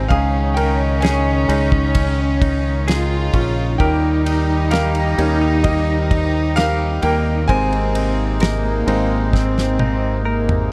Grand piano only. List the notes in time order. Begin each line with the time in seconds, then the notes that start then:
Already playing: G#3 C4 D#4 G#4 D#5
0.08 G#4 F5
0.54 A#4 G5
1.01 C#5 G#5
1.48 G#3 C#4 D#4
3.78 A#4 G5
4.71 A#4 F5
5.18 G3 A#3 D#4
5.64 G4 D#5
6.56 A#4 F5
7.02 A#4 G5
7.48 C5 G#5
8.86 G#3 A#3 C4